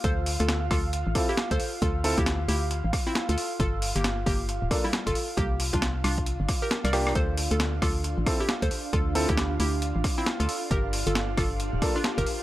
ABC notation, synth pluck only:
X:1
M:4/4
L:1/16
Q:"Swing 16ths" 1/4=135
K:Dm
V:1 name="Synth pluck"
[Ac]2 z [FA]2 z [FA]2 z3 [EG] z [Ac]2 z | [FA]2 z [EG]2 z [EG]2 z3 [CE] z [FA]2 z | [FA]2 z [B,G]2 z [B,G]2 z3 [G,E] z [FA]2 z | [B,G]2 z [DF]2 z [DF]2 z3 [GB] z [Bd]2 z |
[Ac]2 z [FA]2 z [FA]2 z3 [EG] z [Ac]2 z | [FA]2 z [EG]2 z [EG]2 z3 [CE] z [FA]2 z | [GB]2 z [FA]2 z [FA]2 z3 [DF] z [GB]2 z |]